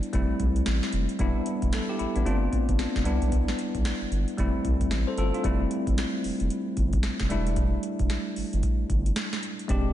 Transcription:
Already playing: G3 B3 D4 E4
0.03 closed hi-hat
0.13 F1 G3 A3 C4 E4, kick, closed hi-hat
0.30 C2
0.40 C2, kick, closed hi-hat
0.56 closed hi-hat
0.66 A1, snare, closed hi-hat
0.83 snare
0.92 F1, closed hi-hat
1.09 closed hi-hat
1.19 E1 G3 B3 D4 E4, kick, closed hi-hat
1.46 closed hi-hat
1.62 E1, kick, closed hi-hat
1.73 A4, snare, closed hi-hat
1.89 E4 G4
1.99 A1 E4, closed hi-hat
2.16 A1 B3 D4, closed hi-hat
2.26 G1 A3 C4 D4 F4, closed hi-hat
2.53 G1, kick, closed hi-hat
2.69 G1, kick, closed hi-hat
2.79 snare, closed hi-hat
2.96 F1, kick, snare
3.04 C2 G3 B3 D4 E4, closed hi-hat
3.22 B1, closed hi-hat
3.32 C2, kick, closed hi-hat
3.48 snare
3.59 closed hi-hat
3.75 B1, kick, closed hi-hat
3.85 snare, closed hi-hat
4.01 G1
4.11 G1, closed hi-hat
4.28 closed hi-hat
4.38 F1 G3 A3 C4 E4, kick, closed hi-hat
4.54 C2
4.65 C2, kick, closed hi-hat
4.81 kick, closed hi-hat
4.91 A1, snare, closed hi-hat
5.07 A4 C5
5.18 G1 F4 A4, closed hi-hat
5.34 D4 F4, closed hi-hat
5.43 F1 G3 A3 C4 E4, kick, closed hi-hat
5.71 closed hi-hat
5.87 G1, kick, closed hi-hat
5.98 snare, closed hi-hat
6.24 F1, open hi-hat
6.40 F1, closed hi-hat
6.50 closed hi-hat
6.77 G1, kick, closed hi-hat
6.93 kick, closed hi-hat
7.03 F1, snare, closed hi-hat
7.20 F1, kick, snare
7.29 E1 G3 A3 D4 E4, closed hi-hat
7.47 closed hi-hat
7.56 kick, closed hi-hat
7.83 closed hi-hat
7.99 E1, kick, closed hi-hat
8.10 snare, closed hi-hat
8.36 G1, open hi-hat
8.53 G1, closed hi-hat
8.63 kick, closed hi-hat
8.90 G1, kick, closed hi-hat
9.06 closed hi-hat
9.16 snare, closed hi-hat
9.33 snare
9.43 closed hi-hat
9.59 closed hi-hat
9.68 E1 G#3 C4 D4 G4, kick, closed hi-hat

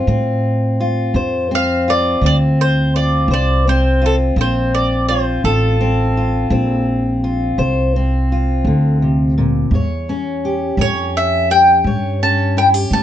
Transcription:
Already playing: F4 C5
0.07 A2 D3 C4
0.80 F4
1.14 F2 D3 C5
1.51 C4 F5
1.88 F4 D5
2.21 D2 D3 C4
2.26 D5
2.61 C5
2.96 F4 D5
3.28 C2 D3 C5
3.34 D5
3.67 C4 C5
4.02 F4
4.06 A4
4.36 A#1 D3 C4
4.41 C5
4.75 D5
5.09 F4 C5
5.44 A1 D3 F4 A4
5.81 C4
6.17 F4
6.50 A#1 D3 C4
7.24 F4
7.58 C2 D3 C5
7.96 C4
8.32 F4
8.65 D2 D3
9.02 C3
9.38 A#2
9.71 E2 A2
9.75 C#5
10.09 C#4
10.45 G4
10.77 F2 A2 C#4
10.81 C#5
11.17 E5
11.50 G4 G5
11.84 G2 A2 C#5
12.23 C#4 A5
12.57 E4 G5
12.74 G4
12.91 A2 C#4 A5

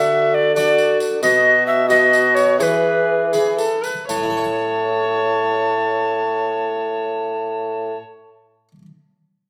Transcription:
Already playing: D3 F#4 E5
0.34 D5
0.56 D4 F#4 A4 D5, tambourine
0.78 tambourine
1.00 tambourine
1.22 B2 F#4 D#5, tambourine
1.67 E5
1.90 F#4 B4 D#5, tambourine
2.13 tambourine
2.35 C#5, tambourine
2.59 E3 G#4 B4 C#5, tambourine
3.33 E4 G#4 B4, tambourine
3.58 A4, tambourine
3.84 B4, tambourine
4.09 A2 C#5 A5, tambourine
4.16 A3
4.23 E4
4.30 A4
4.37 C#5
4.44 A5

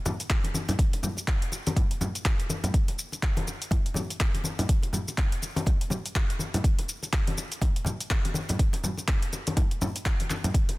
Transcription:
0.05 muted conga, high conga, low conga, shaker
0.20 closed hi-hat, shaker
0.30 kick, clap, closed hi-hat, muted conga, shaker
0.44 closed hi-hat, high conga
0.54 high conga, shaker
0.68 closed hi-hat, muted conga, low conga, shaker
0.79 kick, closed hi-hat, high conga, shaker
0.93 closed hi-hat, muted conga
1.03 high conga, low conga, shaker
1.17 muted conga, shaker
1.28 kick, clap, closed hi-hat, shaker
1.42 closed hi-hat
1.52 muted conga, shaker
1.67 closed hi-hat, high conga, shaker
1.76 kick, closed hi-hat, muted conga, low conga, shaker
1.91 closed hi-hat
2.01 muted conga, high conga, low conga, shaker
2.15 closed hi-hat, shaker
2.25 kick, clap, closed hi-hat, muted conga, shaker
2.40 closed hi-hat
2.50 high conga, shaker
2.63 closed hi-hat, muted conga, low conga, shaker
2.74 kick, closed hi-hat, shaker
2.88 closed hi-hat, muted conga
2.99 shaker
3.12 muted conga, shaker
3.23 kick, clap, closed hi-hat, shaker
3.37 closed hi-hat, high conga
3.47 muted conga, shaker
3.62 closed hi-hat, shaker
3.71 kick, closed hi-hat, muted conga, low conga, shaker
3.86 closed hi-hat
3.94 muted conga, high conga, low conga, shaker
4.10 closed hi-hat, shaker
4.20 kick, clap, closed hi-hat, muted conga, shaker
4.34 closed hi-hat, high conga
4.44 high conga, shaker
4.59 closed hi-hat, muted conga, low conga, shaker
4.69 kick, closed hi-hat, high conga, shaker
4.82 closed hi-hat, muted conga
4.93 high conga, low conga, shaker
5.08 muted conga, shaker
5.18 kick, clap, closed hi-hat, shaker
5.32 closed hi-hat
5.42 muted conga, shaker
5.56 closed hi-hat, high conga, shaker
5.66 kick, closed hi-hat, muted conga, low conga, shaker
5.81 closed hi-hat
5.90 muted conga, high conga, low conga, shaker
6.06 closed hi-hat, shaker
6.15 kick, clap, closed hi-hat, muted conga, shaker
6.30 closed hi-hat
6.39 high conga, shaker
6.54 closed hi-hat, muted conga, low conga, shaker
6.64 kick, closed hi-hat, shaker
6.79 closed hi-hat, muted conga
6.89 shaker
7.03 muted conga, shaker
7.13 kick, clap, closed hi-hat, shaker
7.27 closed hi-hat, high conga
7.38 muted conga, shaker
7.52 closed hi-hat, shaker
7.61 kick, closed hi-hat, muted conga, low conga, shaker
7.76 closed hi-hat
7.85 muted conga, high conga, low conga, shaker
8.01 closed hi-hat, shaker
8.10 kick, clap, closed hi-hat, muted conga, shaker
8.25 closed hi-hat, high conga
8.34 high conga, shaker
8.49 closed hi-hat, muted conga, low conga, shaker
8.59 kick, closed hi-hat, high conga, shaker
8.73 closed hi-hat, muted conga
8.84 high conga, low conga, shaker
8.97 muted conga, shaker
9.08 kick, clap, closed hi-hat, shaker
9.22 closed hi-hat
9.33 muted conga, shaker
9.47 closed hi-hat, high conga, shaker
9.57 kick, closed hi-hat, muted conga, low conga, shaker
9.71 closed hi-hat
9.82 muted conga, high conga, low conga, shaker
9.96 closed hi-hat, shaker
10.05 kick, clap, closed hi-hat, muted conga, shaker
10.20 closed hi-hat, high conga
10.30 clap, high conga, shaker
10.44 closed hi-hat, muted conga, low conga, shaker
10.54 kick, closed hi-hat, shaker
10.69 closed hi-hat, muted conga

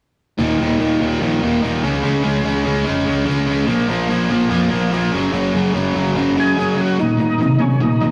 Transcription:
0.38 D#1 D#2 A#2 D#3 A#3 D#4 F#4
0.58 D#1 D#2 A#2 D#3 A#3 D#4 F#4
0.71 A#3 F#4
0.79 D#1 D#2 A#2 D#3 A#3 D#4 F#4
1.00 D#1 D#2 A#2 D#3
1.11 A#3 D#4 F#4
1.21 A#1 D#2 A#2 D#3 A#3
1.32 A#3 D#4 F#4
1.42 D#1 D#2 A#2 D#3 A#3 D#4 F#4
1.54 A#3 F#4
1.61 D#1 D#2 A#2 D#3
1.66 A#3 D#4 F#4
1.82 C#2 C#3 F3 G#3 C#4
1.87 G#3 C#4 F4
2.03 C#2 C#3 F3 G#3 C#4
2.07 F4
2.22 C#2 C#3 G#3 C#4
2.27 F3 G#3 C#4 F4
2.37 G#3 F4
2.45 C#2 C#3 F3 G#3 C#4
2.49 F4
2.65 C#2 C#3 G#3 C#4
2.81 C#3 G#3
2.86 F1 F3 G#3 C#4
2.91 F4
2.99 G#3 C#4 F4
3.06 C#2 C#3 G#3 C#4
3.10 F3 G#3
3.20 G#3 C#4 F4
3.26 C#2 C#3 G#3 C#4
3.30 C#3 F3 G#3 C#4 F4
3.46 C#3 F3 G#3 C#4
3.51 G#3
3.67 A#1 A#2 F3 A#3 C#4 F4
3.88 A#1 A#2 F3 A#3 C#4 F4
4.01 A#3 C#4 F4
4.08 A#1 A#2 F3 A#3 C#4
4.13 F4
4.29 A#1 A#2 F3 A#3
4.42 A#3 C#4 F4
4.50 F2 A#2 F3 A#3 C#4
4.64 A#3 C#4
4.70 A#1 A#2 F3 A#3
4.74 A#3 C#4
4.85 A#3 C#4
4.92 A#1 A#2 F3 A#3 C#4 F4
5.13 F#1 F#2 C#3 F#3 G#3 C#4 F#4
5.22 G#3 C#4 F#4
5.32 F#1 F#2 C#3 F#3 G#3 C#4 F#4
5.53 F#1 F#2 C#3 F#3 G#3 C#4 F#4
5.64 G#3 C#4 F#4
5.73 F#1 F#2 C#3 F#3 G#3
5.77 C#4 F#4
5.94 F#1 F#2 C#3 F#3
6.05 G#3 C#4 F#4
6.15 G#1 F#2 C#3 F#3 G#3 C#4 F#4
6.28 G#3 C#4 F#4
6.35 F#2 C#3 F#3 G#3 C#4
6.40 F#4 G#4
6.48 G#3 F#4
6.57 F#2 C#3 F#3 G#3 C#4 F#4
6.77 F#2 C#3 F#3 G#3
6.81 F#4
6.89 G#3 F#4
6.97 D#2 A#2 D#3 A#3 D#4 F#4
7.09 A#3 F#4
7.17 D#2 A#2 D#3 A#3 D#4
7.22 F#4
7.30 A#3 D#4 F#4
7.38 D#2 C3 D#3 A#3
7.42 D#4 F#4
7.52 A#3 F#4
7.59 D#2 C3 C#4
7.71 A#3 D#4 F#4
7.80 D#2 A#2 D#4
7.92 A#3 D#4 F#4
8.01 D#2 A#2 D#3 A#3 D#4
8.05 F#4

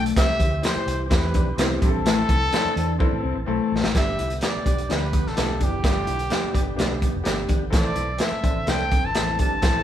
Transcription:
Already playing: B1 F3 A3 D4 A4
0.06 closed hi-hat
0.15 C2 C3 E3 C4 E4 G4 E5, kick, snare, closed hi-hat
0.39 D2 G4, kick, closed hi-hat
0.62 C4 E4 G4 C5, snare, closed hi-hat
0.76 muted fingered electric bass stroke
0.87 C2, closed hi-hat
1.05 C5
1.09 E2 C4 E4 G4 B4, kick, snare, closed hi-hat
1.34 D4, kick, closed hi-hat
1.46 B1
1.57 C2 E2 C4 E4 G4, snare, closed hi-hat
1.81 A1 G2 C4 E4 G4 A4, kick, closed hi-hat
1.88 A4
2.05 A2 A3, snare, closed hi-hat
2.29 C2 E4, kick, closed hi-hat
2.52 C4 D4 E4 A4, snare, closed hi-hat
2.65 muted fingered electric bass stroke
2.76 E2, closed hi-hat
2.99 E2 C4 D4 E4 A4, kick
3.12 A2
3.23 C2 C4
3.36 A1
3.46 B1 A3 C4 E4 A4
3.72 A1
3.84 A1, snare
3.94 G1 G2 D3 B3 D4 G4 E5, kick, snare, closed hi-hat
4.19 C2 E4, closed hi-hat
4.30 closed hi-hat
4.41 B3 D4 G4, snare, closed hi-hat
4.45 D5
4.56 muted fingered electric bass stroke
4.65 B1 B3 D4 G4, kick, closed hi-hat
4.78 closed hi-hat
4.89 D2 B3 D4 G4 B4, snare, closed hi-hat
5.13 B3, kick, closed hi-hat
5.26 A1 A4, snare
5.36 B1 D2 B3 D4 E4 G4, snare, closed hi-hat
5.60 F#1 E2 D4 G4, kick, closed hi-hat
5.83 G1 G2 B3 D4 F4 G4, kick, snare, closed hi-hat
6.07 B1 E4, closed hi-hat
6.19 closed hi-hat
6.29 B3 D4 G4, snare, closed hi-hat
6.43 muted fingered electric bass stroke
6.53 G1 B3 D4 G4, kick, closed hi-hat
6.76 B1 D2 B3 D4 G4, snare, closed hi-hat
7.01 B3, kick, closed hi-hat
7.14 F1
7.23 G1 B3 D4 G4, snare, closed hi-hat
7.49 G#1 D4, kick, closed hi-hat
7.70 A1 A2 E3 C4 E4 A4, kick, snare, closed hi-hat
7.74 D5
7.96 B1 E4, closed hi-hat
8.18 C4 E4 A4, snare, closed hi-hat
8.22 E5
8.32 muted fingered electric bass stroke
8.43 A1 C4 D4 E4 A4, kick, closed hi-hat
8.66 C2 C4 D4 E4 A4 G5, snare, closed hi-hat
8.91 C4, kick, closed hi-hat
9.02 G1 A5
9.14 A1 E2 C4 E4 A4, snare, closed hi-hat
9.39 G#1 G2 D4 A5, kick, closed hi-hat
9.61 A1 A2 C4 E4 G4 A4, kick, snare, closed hi-hat

